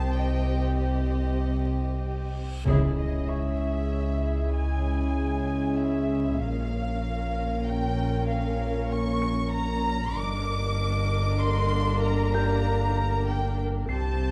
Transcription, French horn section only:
2.65 6.36 G#3 medium
2.65 6.36 C#4 medium
6.40 9.98 A#3 medium
6.40 9.98 C#4 medium
10.15 13.86 D3 medium
10.15 13.86 A#3 medium
13.90 14.31 G3 medium
13.90 14.31 C4 medium

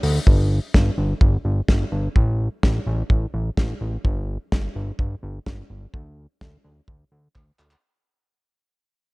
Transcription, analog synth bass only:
0.03 0.20 D2 medium
0.27 0.60 G1 loud
0.74 0.91 G1 loud
0.98 1.14 G1 loud
1.21 1.38 G1 loud
1.45 1.61 G1 medium
1.68 1.85 G1 medium
1.92 2.09 G1 loud
2.16 2.49 A1 loud
2.63 2.80 A1 loud
2.87 3.03 A1 loud
3.10 3.27 A1 loud
3.34 3.50 A1 loud
3.57 3.74 A1 loud
3.81 3.98 A1 medium
4.05 4.38 G1 loud
4.52 4.69 G1 loud
4.75 4.92 G1 loud
4.99 5.16 G1 loud
5.23 5.39 G1 loud
5.46 5.63 G1 loud
5.70 5.87 G1 loud
5.94 6.27 D2 loud
6.41 6.58 D2 medium
6.64 6.81 D2 loud
6.88 7.05 D2 loud
7.12 7.28 D2 loud
7.35 7.52 D2 medium
7.59 7.76 D2 loud

